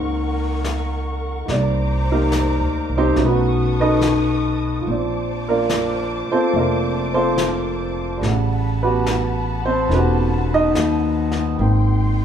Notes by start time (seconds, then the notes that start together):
Already playing: C#2 D#3 G#3 A#3 C4 C#4 D#4 A#4 F#5 C#6
0.64 snare, hi-hat pedal
1.46 C2 D#3 G3 C5 A#5 D6, brush sweep, snare
1.50 A#3 D5
2.12 A#3 D#4 G4 A#4
2.32 snare, hi-hat pedal
2.60 D2
2.90 C2
2.97 C4 D#4 G4 C5
3.16 B1 F#3 A3 C#4 D#4 B4 A5 C#6 D#6, brush sweep, snare
3.26 B3 D#4 F#4 B4
3.80 D#4 A4 B4 D#5
4.01 snare, hi-hat pedal
4.81 F3
4.86 A#1 C4 C5 A5 D6, brush sweep
4.91 D4
5.49 A#3 D4 F4 A#4
5.70 snare, hi-hat pedal
6.28 F4 A4 C5, muted upright bass stroke
6.33 C4
6.53 F1 A#3 D4 E5, brush sweep
6.58 A#3 D4 F4 A#4
7.14 C4 F4 A4 C5
7.38 snare, hi-hat pedal
8.17 G3 A3
8.21 A1 C#3 F#5 A5 B5, brush sweep, snare
8.29 F#5
8.83 B3 F#4 G4 B4
9.06 snare, hi-hat pedal
9.66 C4 C5
9.88 E1 C#4 D#4 A4, brush sweep, snare
9.95 B3 F#4 G4 B4
10.54 D#4 D#5
10.74 D#2, snare, hi-hat pedal
11.32 snare
11.56 G#1 A#3 G5 C6
11.60 C4 D#4 G5, brush sweep